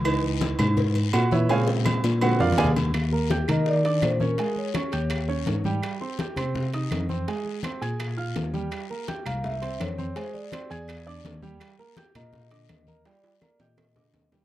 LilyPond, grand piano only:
<<
  \new Staff \with { instrumentName = "Grand piano" } { \time 4/4 \key bes \dorian \tempo 4 = 166 r2. <ges' ges''>8 <fes' ces'' des'' fes''>8 | <aes' des'' f'' aes''>8 r4. <ges' ges''>8 <f' bes' d'' f''>8 <aes' d'' f'' aes''>8 r8 | \key ees \major r8 <bes bes' bes''>8 <g' g'' g'''>8 <bes bes' bes''>4 <d' d'' d'''>4 <des' des'' des'''>8 | <aes aes' aes''>4 <des' des'' des'''>8 <g' g'' g'''>4 <des' des'' des'''>4 <g g' g''>8~ |
<g g' g''>8 <c' c'' c'''>8 <g' g'' g'''>8 <c' c'' c'''>4 <ees' ees'' ees'''>4 <c' c'' c'''>8 | <aes aes' aes''>4 <c' c'' c'''>8 <aes' aes'' aes'''>4 <f' f'' f'''>4 <g g' g''>8~ | <g g' g''>8 <bes bes' bes''>8 <g' g'' g'''>8 <bes bes' bes''>4 <c' c'' c'''>4 <c' c'' c'''>8 | <gis gis' gis''>4 <bis bis' bis''>8 <gis' gis'' gis'''>4 <d' d'' d'''>4 <g g' g''>8~ |
<g g' g''>8 <bes bes' bes''>8 <g' g'' g'''>8 <bes bes' bes''>4 <d ees'' d'''>4 <bes bes' bes''>8 | <g g' g''>4 <bes bes' bes''>8 <g' g'' g'''>4 <d ees'' d'''>4 <g g' g''>8 | }
  \new Staff \with { instrumentName = "Grand piano" } { \clef bass \time 4/4 \key bes \dorian <fes ees' ces''>1 | <des aes c'>4. r8 <d aes c'>8 r4. | \key ees \major r1 | r1 |
r1 | r1 | r1 | r1 |
r1 | r1 | }
>>